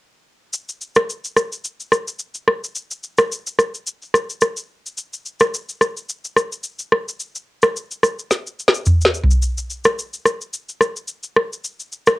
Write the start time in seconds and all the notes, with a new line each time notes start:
0.53 shaker
0.69 shaker
0.81 shaker
0.96 cross-stick, shaker
1.10 shaker
1.25 shaker
1.37 cross-stick, shaker
1.52 shaker
1.65 shaker
1.80 shaker
1.92 cross-stick, shaker
2.08 shaker
2.19 shaker
2.34 shaker
2.48 cross-stick
2.64 shaker
2.75 shaker
2.91 shaker
3.03 shaker
3.18 cross-stick, shaker
3.32 shaker
3.47 shaker
3.59 cross-stick, shaker
3.75 shaker
3.87 shaker
4.02 shaker
4.14 cross-stick, shaker
4.30 shaker
4.41 cross-stick, shaker
4.57 shaker
4.86 shaker
4.98 shaker
5.13 shaker
5.26 shaker
5.40 cross-stick, shaker
5.54 shaker
5.69 shaker
5.81 cross-stick, shaker
5.97 shaker
6.09 shaker
6.25 shaker
6.36 cross-stick, shaker
6.52 shaker
6.63 shaker
6.79 shaker
6.92 cross-stick
7.08 shaker
7.20 shaker
7.35 shaker
7.62 cross-stick, shaker
7.76 shaker
7.91 shaker
8.03 cross-stick, shaker
8.19 shaker
8.31 snare, shaker
8.47 shaker
8.59 shaker
8.68 snare
8.74 shaker
8.86 mid tom, shaker
9.01 snare, shaker
9.14 shaker
9.23 floor tom
9.31 shaker
9.42 shaker
9.58 shaker
9.70 shaker
9.84 cross-stick, shaker
9.99 shaker
10.13 shaker
10.25 cross-stick, shaker
10.41 shaker
10.53 shaker
10.69 shaker
10.81 cross-stick, shaker
10.96 shaker
11.08 shaker
11.23 shaker
11.37 cross-stick
11.53 shaker
11.64 shaker
11.80 shaker
11.92 shaker
12.07 cross-stick, shaker